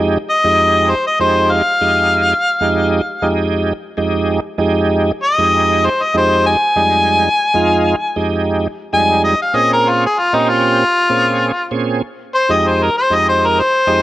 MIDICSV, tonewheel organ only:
0, 0, Header, 1, 2, 480
1, 0, Start_track
1, 0, Key_signature, -4, "minor"
1, 0, Tempo, 618557
1, 1649, Time_signature, 4, 2, 24, 8
1, 10881, End_track
2, 0, Start_track
2, 0, Title_t, "Tonewheel organ"
2, 0, Program_c, 0, 16
2, 0, Note_on_c, 0, 41, 95
2, 0, Note_on_c, 0, 56, 85
2, 0, Note_on_c, 0, 63, 80
2, 0, Note_on_c, 0, 67, 90
2, 138, Note_off_c, 0, 41, 0
2, 138, Note_off_c, 0, 56, 0
2, 141, Note_off_c, 0, 63, 0
2, 142, Note_off_c, 0, 67, 0
2, 341, Note_on_c, 0, 41, 78
2, 345, Note_on_c, 0, 56, 72
2, 350, Note_on_c, 0, 67, 91
2, 351, Note_on_c, 0, 63, 68
2, 735, Note_off_c, 0, 41, 0
2, 737, Note_off_c, 0, 56, 0
2, 740, Note_off_c, 0, 63, 0
2, 740, Note_off_c, 0, 67, 0
2, 927, Note_on_c, 0, 41, 73
2, 929, Note_on_c, 0, 56, 58
2, 934, Note_on_c, 0, 63, 63
2, 940, Note_on_c, 0, 67, 75
2, 1256, Note_off_c, 0, 41, 0
2, 1258, Note_off_c, 0, 56, 0
2, 1260, Note_off_c, 0, 63, 0
2, 1263, Note_off_c, 0, 67, 0
2, 1405, Note_on_c, 0, 41, 60
2, 1405, Note_on_c, 0, 56, 55
2, 1407, Note_on_c, 0, 63, 61
2, 1410, Note_on_c, 0, 67, 67
2, 1815, Note_off_c, 0, 41, 0
2, 1815, Note_off_c, 0, 56, 0
2, 1816, Note_off_c, 0, 63, 0
2, 1818, Note_off_c, 0, 67, 0
2, 2024, Note_on_c, 0, 41, 91
2, 2026, Note_on_c, 0, 56, 78
2, 2031, Note_on_c, 0, 63, 78
2, 2033, Note_on_c, 0, 67, 93
2, 2336, Note_off_c, 0, 41, 0
2, 2337, Note_off_c, 0, 56, 0
2, 2340, Note_off_c, 0, 63, 0
2, 2341, Note_off_c, 0, 67, 0
2, 2499, Note_on_c, 0, 41, 78
2, 2500, Note_on_c, 0, 56, 67
2, 2503, Note_on_c, 0, 63, 79
2, 2508, Note_on_c, 0, 67, 86
2, 2894, Note_off_c, 0, 41, 0
2, 2895, Note_off_c, 0, 56, 0
2, 2896, Note_off_c, 0, 63, 0
2, 2899, Note_off_c, 0, 67, 0
2, 3082, Note_on_c, 0, 56, 73
2, 3084, Note_on_c, 0, 41, 75
2, 3087, Note_on_c, 0, 67, 88
2, 3088, Note_on_c, 0, 63, 78
2, 3414, Note_off_c, 0, 56, 0
2, 3415, Note_off_c, 0, 41, 0
2, 3417, Note_off_c, 0, 63, 0
2, 3417, Note_off_c, 0, 67, 0
2, 3554, Note_on_c, 0, 41, 96
2, 3557, Note_on_c, 0, 56, 88
2, 3557, Note_on_c, 0, 63, 92
2, 3563, Note_on_c, 0, 67, 103
2, 3970, Note_off_c, 0, 41, 0
2, 3972, Note_off_c, 0, 56, 0
2, 3972, Note_off_c, 0, 63, 0
2, 3975, Note_off_c, 0, 67, 0
2, 4173, Note_on_c, 0, 41, 90
2, 4177, Note_on_c, 0, 63, 77
2, 4179, Note_on_c, 0, 56, 72
2, 4181, Note_on_c, 0, 67, 88
2, 4572, Note_off_c, 0, 41, 0
2, 4574, Note_off_c, 0, 63, 0
2, 4575, Note_off_c, 0, 56, 0
2, 4575, Note_off_c, 0, 67, 0
2, 4764, Note_on_c, 0, 41, 71
2, 4766, Note_on_c, 0, 56, 67
2, 4767, Note_on_c, 0, 63, 70
2, 4775, Note_on_c, 0, 67, 81
2, 5096, Note_off_c, 0, 41, 0
2, 5096, Note_off_c, 0, 56, 0
2, 5097, Note_off_c, 0, 63, 0
2, 5101, Note_off_c, 0, 67, 0
2, 5245, Note_on_c, 0, 41, 69
2, 5245, Note_on_c, 0, 56, 58
2, 5249, Note_on_c, 0, 63, 57
2, 5250, Note_on_c, 0, 55, 78
2, 5656, Note_off_c, 0, 41, 0
2, 5656, Note_off_c, 0, 56, 0
2, 5658, Note_off_c, 0, 63, 0
2, 5659, Note_off_c, 0, 55, 0
2, 5850, Note_on_c, 0, 56, 78
2, 5851, Note_on_c, 0, 41, 86
2, 5858, Note_on_c, 0, 63, 74
2, 5863, Note_on_c, 0, 65, 90
2, 6170, Note_off_c, 0, 41, 0
2, 6170, Note_off_c, 0, 56, 0
2, 6174, Note_off_c, 0, 63, 0
2, 6176, Note_off_c, 0, 65, 0
2, 6334, Note_on_c, 0, 41, 74
2, 6334, Note_on_c, 0, 56, 76
2, 6334, Note_on_c, 0, 63, 65
2, 6338, Note_on_c, 0, 67, 82
2, 6732, Note_off_c, 0, 41, 0
2, 6733, Note_off_c, 0, 56, 0
2, 6733, Note_off_c, 0, 63, 0
2, 6734, Note_off_c, 0, 67, 0
2, 6927, Note_on_c, 0, 56, 67
2, 6929, Note_on_c, 0, 41, 66
2, 6929, Note_on_c, 0, 63, 60
2, 6934, Note_on_c, 0, 55, 75
2, 7257, Note_off_c, 0, 56, 0
2, 7258, Note_off_c, 0, 41, 0
2, 7258, Note_off_c, 0, 63, 0
2, 7261, Note_off_c, 0, 55, 0
2, 7400, Note_on_c, 0, 60, 71
2, 7401, Note_on_c, 0, 46, 72
2, 7404, Note_on_c, 0, 61, 68
2, 7407, Note_on_c, 0, 68, 84
2, 7814, Note_off_c, 0, 46, 0
2, 7814, Note_off_c, 0, 60, 0
2, 7816, Note_off_c, 0, 61, 0
2, 7817, Note_off_c, 0, 68, 0
2, 8017, Note_on_c, 0, 46, 83
2, 8023, Note_on_c, 0, 60, 69
2, 8023, Note_on_c, 0, 61, 71
2, 8028, Note_on_c, 0, 67, 86
2, 8414, Note_off_c, 0, 46, 0
2, 8417, Note_off_c, 0, 60, 0
2, 8417, Note_off_c, 0, 61, 0
2, 8419, Note_off_c, 0, 67, 0
2, 8610, Note_on_c, 0, 46, 66
2, 8610, Note_on_c, 0, 60, 62
2, 8613, Note_on_c, 0, 68, 79
2, 8618, Note_on_c, 0, 61, 58
2, 8939, Note_off_c, 0, 46, 0
2, 8939, Note_off_c, 0, 60, 0
2, 8940, Note_off_c, 0, 68, 0
2, 8942, Note_off_c, 0, 61, 0
2, 9087, Note_on_c, 0, 60, 72
2, 9088, Note_on_c, 0, 46, 76
2, 9088, Note_on_c, 0, 61, 81
2, 9092, Note_on_c, 0, 68, 88
2, 9328, Note_off_c, 0, 60, 0
2, 9329, Note_off_c, 0, 46, 0
2, 9329, Note_off_c, 0, 61, 0
2, 9331, Note_off_c, 0, 68, 0
2, 9691, Note_on_c, 0, 41, 70
2, 9695, Note_on_c, 0, 56, 67
2, 9697, Note_on_c, 0, 63, 63
2, 9700, Note_on_c, 0, 67, 83
2, 10010, Note_off_c, 0, 41, 0
2, 10012, Note_off_c, 0, 56, 0
2, 10013, Note_off_c, 0, 63, 0
2, 10015, Note_off_c, 0, 67, 0
2, 10167, Note_on_c, 0, 41, 67
2, 10169, Note_on_c, 0, 56, 63
2, 10172, Note_on_c, 0, 63, 62
2, 10177, Note_on_c, 0, 67, 67
2, 10568, Note_off_c, 0, 41, 0
2, 10569, Note_off_c, 0, 56, 0
2, 10571, Note_off_c, 0, 63, 0
2, 10573, Note_off_c, 0, 67, 0
2, 10763, Note_on_c, 0, 41, 74
2, 10765, Note_on_c, 0, 56, 63
2, 10767, Note_on_c, 0, 63, 71
2, 10769, Note_on_c, 0, 67, 75
2, 10881, Note_off_c, 0, 41, 0
2, 10881, Note_off_c, 0, 56, 0
2, 10881, Note_off_c, 0, 63, 0
2, 10881, Note_off_c, 0, 67, 0
2, 10881, End_track
0, 0, End_of_file